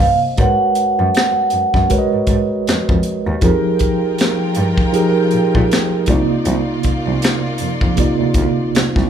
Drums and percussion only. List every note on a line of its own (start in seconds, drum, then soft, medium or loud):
0.00 kick medium
0.37 kick loud
0.37 closed hi-hat medium
0.75 closed hi-hat medium
1.15 finger snap medium
1.15 snare loud
1.15 closed hi-hat medium
1.50 closed hi-hat medium
1.74 kick medium
1.74 snare soft
1.90 kick medium
1.90 closed hi-hat medium
2.27 kick medium
2.27 closed hi-hat medium
2.67 finger snap medium
2.67 snare medium
2.67 closed hi-hat medium
2.89 kick loud
3.03 closed hi-hat medium
3.41 kick loud
3.41 closed hi-hat medium
3.79 kick medium
3.79 closed hi-hat medium
4.18 finger snap medium
4.18 snare loud
4.18 closed hi-hat medium
4.55 closed hi-hat medium
4.78 kick medium
4.94 closed hi-hat medium
5.31 closed hi-hat medium
5.55 kick medium
5.72 finger snap medium
5.72 snare loud
5.72 closed hi-hat medium
6.06 kick loud
6.06 closed hi-hat medium
6.45 closed hi-hat medium
6.83 kick medium
6.83 closed hi-hat medium
7.22 finger snap medium
7.22 snare loud
7.22 closed hi-hat medium
7.58 closed hi-hat medium
7.81 kick medium
7.97 kick medium
7.97 closed hi-hat medium
8.34 kick medium
8.34 closed hi-hat medium
8.75 finger snap medium
8.75 snare loud
8.75 closed hi-hat medium
8.96 kick loud
8.96 snare soft